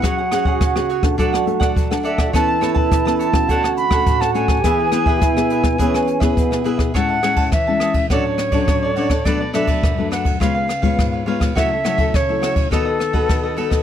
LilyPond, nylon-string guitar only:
\new Staff \with { instrumentName = "Nylon-string guitar" } { \time 4/4 \key a \major \tempo 4 = 104 << { <cis' fis' gis'>16 r16 <cis' fis' gis'>8 r16 <cis' fis' gis'>8 <a d' a'>8. <a d' a'>8 r16 <a d' a'>8. | <b cis' a'>8 <b cis' a'>8. <b cis' a'>8 <a cis' fis'>4 <a cis' fis'>8. <a cis' fis'>8 | <b e' gis'>8 <b e' gis'>8. <b e' gis'>8 <b e' gis'>16 <b e' gis'>8. <b e' gis'>8. <b e' gis'>8 | <gis cis' e'>8 <gis cis' e'>8 r16 <gis cis' e'>8. <fis cis' d'>8. <fis cis' d'>8. <fis cis' d'>16 r16 |
<fis a d'>16 r16 <fis a d'>8. <fis a d'>8. <gis b eis'>8 r16 <gis b eis'>8. <gis b eis'>8 | <fis a e'>16 r16 <fis a e'>8 r16 <fis a e'>8. <b fis' a'>8 r16 <b fis' a'>8. <b fis' a'>8 | } \\ { fis4 cis4 fis4 fis4 | e4 e4 d4 a,4 | e4 b,4 e4 b,4 | a,4 e4 a,4 a,4 |
b,4 fis,4 cis4 gis,4 | cis4 cis4 dis4 dis4 | } >> }